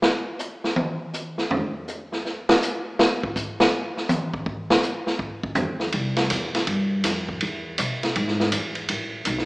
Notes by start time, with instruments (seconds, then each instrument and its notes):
0.02 snare
0.39 hi-hat pedal
0.64 snare
0.76 high tom
1.13 hi-hat pedal
1.38 snare
1.51 floor tom
1.88 hi-hat pedal
2.12 snare
2.25 snare
2.49 snare
2.62 hi-hat pedal
2.99 snare
3.23 kick
3.36 kick, hi-hat pedal
3.60 snare
3.97 snare
4.09 hi-hat pedal, high tom
4.34 kick
4.46 kick
4.70 snare
4.82 hi-hat pedal
5.07 snare
5.19 kick
5.43 kick
5.55 floor tom, hi-hat pedal
5.80 snare
5.92 upright bass C2, ride
6.16 snare, ride
6.30 upright bass E2, hi-hat pedal, ride
6.55 muted upright bass stroke, snare, ride
6.67 upright bass G2, ride
7.04 upright bass F2, snare, hi-hat pedal, ride
7.29 kick
7.41 upright bass E2, ride
7.78 upright bass B2, hi-hat pedal, ride
8.03 muted upright bass stroke, snare, ride
8.16 upright bass G#2, ride
8.28 snare
8.40 snare
8.52 upright bass E2, hi-hat pedal, ride
8.75 ride
8.89 upright bass A1, ride
9.25 upright bass B1, hi-hat pedal, ride
9.38 snare